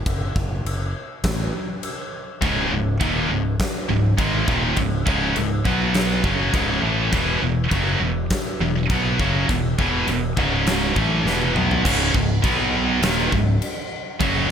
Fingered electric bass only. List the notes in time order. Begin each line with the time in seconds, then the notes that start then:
0.06 F#1
0.36 F#1
0.65 F#1
1.24 A1
2.42 C#1
2.71 C#1
3.01 D#1
3.30 C#1
3.90 C#1
4.18 G#1
4.48 D#1
4.78 C#1
5.07 C#1
5.37 C#1
5.65 B1
6.24 F#1
6.54 C#1
6.82 A1
7.12 E1
7.42 E1
7.71 F#1
8.00 E1
8.60 E1
8.90 B1
9.19 F#1
9.49 E1
9.79 E1
10.07 E1
10.38 C#1
10.96 A1
11.26 E1
11.56 B1
11.84 C#1
12.15 C#1
12.44 B1
13.02 D#1
13.33 C#1
14.21 F#1